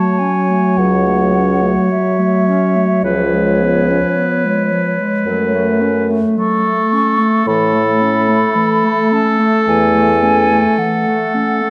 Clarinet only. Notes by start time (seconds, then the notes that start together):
Already playing: A3
0.20 C#4
0.50 A3
0.78 F#3
1.06 A3
1.33 C#4
1.62 A3
1.90 F#3
2.19 A3
2.48 C#4
2.76 A3
3.05 F3
3.33 G#3
3.61 B3
3.90 C#4
4.17 B3
4.45 G#3
4.71 F3
5.00 G#3
5.27 F#3
5.54 A3
5.81 C#4
6.10 A3
6.37 F#3
6.65 A3
6.93 C#4
7.18 A3
7.47 E3
7.74 A3
8.02 C#4
8.29 A3
8.56 E3
8.84 A3
9.12 C#4
9.39 A3
9.67 E3
9.95 A3
10.24 C#4
10.51 A3
10.78 E3
11.07 A3
11.34 C#4
11.62 A3